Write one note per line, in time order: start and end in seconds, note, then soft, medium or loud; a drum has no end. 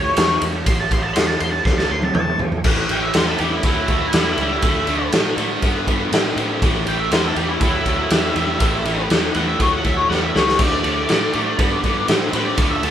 0.00 0.12 D2 medium
0.00 2.60 A3 medium
0.00 2.60 G4 medium
0.00 0.40 C#5 loud
0.00 2.61 C#5 medium
0.17 0.37 E2 medium
0.17 snare loud
0.17 ride loud
0.41 0.62 E2 loud
0.41 ride medium
0.66 0.87 A1 loud
0.66 0.78 C6 loud
0.66 kick loud
0.66 ride loud
0.80 0.92 A5 loud
0.91 1.11 A1 medium
0.91 1.02 C6 medium
0.91 kick medium
0.91 ride medium
1.03 1.14 A5 medium
1.14 1.36 E2 medium
1.14 1.27 C6 medium
1.14 snare loud
1.14 ride medium
1.27 1.40 A5 medium
1.27 snare soft
1.40 1.61 E2 medium
1.40 1.51 C6 medium
1.40 ride medium
1.51 1.64 A5 medium
1.65 1.85 D2 loud
1.65 1.78 C6 medium
1.65 kick loud
1.65 snare medium
1.78 1.91 A5 medium
1.78 snare medium
1.90 2.10 D2 medium
1.90 2.03 C6 medium
2.02 2.14 A5 medium
2.02 high tom medium
2.15 2.35 E2 medium
2.15 2.39 A5 loud
2.15 mid tom medium
2.39 2.60 E2 loud
2.39 floor tom loud
2.52 floor tom medium
2.64 2.85 A1 medium
2.64 2.87 A2 medium
2.64 2.87 E3 medium
2.64 kick loud
2.64 crash loud
2.89 3.10 A1 medium
2.89 3.12 A2 medium
2.89 3.12 E3 medium
2.89 3.02 G5 medium
2.89 ride medium
3.02 3.14 E5 medium
3.14 3.35 E2 medium
3.14 3.37 A2 medium
3.14 3.37 E3 medium
3.14 3.27 C5 medium
3.14 snare loud
3.14 ride medium
3.26 3.38 A4 medium
3.38 3.59 E2 medium
3.38 3.61 A2 medium
3.38 3.62 E3 medium
3.38 3.52 G4 medium
3.38 ride medium
3.52 3.63 E4 medium
3.63 3.84 D2 medium
3.63 3.87 A2 medium
3.63 3.87 F#3 medium
3.63 5.09 E4 medium
3.63 kick loud
3.63 ride medium
3.88 4.09 D2 medium
3.88 4.12 A2 medium
3.88 4.12 F#3 medium
3.88 kick medium
3.88 ride medium
4.13 4.34 E2 medium
4.13 4.37 A2 medium
4.13 4.37 G3 medium
4.13 snare loud
4.13 ride loud
4.37 4.58 C#2 medium
4.37 4.61 A2 medium
4.37 4.62 G3 medium
4.37 ride medium
4.62 4.83 D2 medium
4.62 4.86 D3 medium
4.62 4.86 A3 medium
4.62 kick loud
4.62 ride medium
4.87 5.08 D2 medium
4.87 5.10 D3 medium
4.87 5.11 A3 medium
4.87 ride medium
5.12 5.33 A2 medium
5.12 5.36 D3 medium
5.12 5.36 A3 medium
5.12 snare loud
5.12 ride medium
5.37 5.58 A2 medium
5.37 5.60 D3 medium
5.37 5.60 A3 medium
5.37 ride medium
5.62 5.83 G2 medium
5.62 5.85 D3 medium
5.62 5.86 B3 medium
5.62 kick medium
5.62 ride medium
5.87 6.08 G2 medium
5.87 6.10 D3 medium
5.87 6.10 B3 medium
5.87 kick medium
5.87 ride medium
6.12 6.32 A2 medium
6.12 6.35 D3 medium
6.12 6.35 C4 loud
6.12 snare loud
6.12 ride medium
6.36 6.64 A2 medium
6.36 6.60 D3 medium
6.36 6.60 C4 medium
6.36 ride medium
6.62 6.82 A1 medium
6.62 6.85 A2 medium
6.62 6.85 E3 medium
6.62 kick loud
6.62 ride medium
6.86 7.07 A1 medium
6.86 7.09 A2 medium
6.86 7.10 E3 medium
6.86 7.00 G5 medium
6.86 ride medium
7.00 7.12 E5 medium
7.11 7.32 E2 medium
7.11 7.34 A2 medium
7.11 7.35 E3 medium
7.11 7.24 C5 medium
7.11 snare loud
7.11 ride medium
7.24 7.37 A4 medium
7.36 7.56 E2 medium
7.36 7.59 A2 medium
7.36 7.59 E3 medium
7.36 7.49 G4 medium
7.36 ride medium
7.49 7.59 E4 medium
7.61 7.82 D2 loud
7.61 7.84 A2 medium
7.61 7.85 F#3 medium
7.61 9.06 E4 medium
7.61 kick loud
7.61 ride medium
7.86 8.06 D2 medium
7.86 8.09 A2 medium
7.86 8.10 F#3 medium
7.86 kick medium
7.86 ride medium
8.10 8.31 E2 medium
8.10 8.34 A2 medium
8.10 8.34 G3 medium
8.10 snare loud
8.10 ride medium
8.35 8.56 E2 medium
8.35 8.59 A2 medium
8.35 8.59 G3 medium
8.35 ride medium
8.60 8.81 A1 loud
8.60 8.83 A2 medium
8.60 8.83 E3 medium
8.60 kick loud
8.60 ride medium
8.85 9.06 A1 medium
8.85 9.08 A2 medium
8.85 9.08 E3 medium
8.85 ride medium
9.10 9.31 E2 medium
9.10 9.33 A2 medium
9.10 9.33 E3 medium
9.10 snare loud
9.10 ride medium
9.34 9.55 E2 medium
9.34 9.58 A2 medium
9.34 9.58 E3 medium
9.34 9.47 F#5 medium
9.34 ride medium
9.48 9.60 E5 medium
9.59 9.80 D2 medium
9.59 9.82 A2 medium
9.59 9.83 F#3 medium
9.59 9.72 C#5 medium
9.59 kick medium
9.59 ride medium
9.73 9.86 F#5 medium
9.84 10.05 D2 medium
9.84 10.07 A2 medium
9.84 10.08 F#3 medium
9.84 9.97 E5 medium
9.84 kick medium
9.84 ride medium
9.97 10.09 C#5 medium
10.09 10.30 E2 medium
10.09 10.32 A2 medium
10.09 10.32 G3 medium
10.09 10.22 F#5 medium
10.09 snare medium
10.23 10.35 E5 medium
10.34 10.55 C#2 medium
10.34 10.57 A2 medium
10.34 10.57 G3 medium
10.34 10.59 C#5 medium
10.34 snare medium
10.48 snare medium
10.58 10.80 D2 medium
10.58 10.81 D3 medium
10.58 10.81 A3 medium
10.58 12.05 D5 loud
10.58 kick loud
10.58 ride medium
10.58 crash medium
10.84 11.05 D2 medium
10.84 11.06 D3 medium
10.84 11.07 A3 medium
10.84 ride medium
11.08 11.30 A2 medium
11.08 11.31 D3 medium
11.08 11.31 A3 medium
11.08 snare loud
11.08 ride medium
11.33 11.54 A2 medium
11.33 11.56 D3 medium
11.33 11.57 A3 medium
11.33 ride medium
11.59 11.79 G2 medium
11.59 11.81 D3 medium
11.59 11.81 B3 medium
11.59 kick loud
11.59 ride medium
11.83 12.04 G2 medium
11.83 12.06 D3 medium
11.83 12.07 B3 medium
11.83 kick medium
11.83 ride medium
12.08 12.29 A2 medium
12.08 12.31 D3 medium
12.08 12.31 C4 loud
12.08 snare loud
12.08 ride medium
12.33 12.53 A2 medium
12.33 12.56 D3 medium
12.33 12.56 C4 medium
12.33 12.46 B4 loud
12.33 ride medium
12.46 12.70 D5 medium
12.58 12.78 D2 medium
12.58 12.81 D3 medium
12.58 12.81 A3 medium
12.58 kick loud
12.58 ride loud
12.70 12.82 E5 medium
12.83 12.91 D2 medium
12.83 12.91 D3 medium
12.83 12.91 A3 medium
12.83 12.91 A5 medium
12.83 ride medium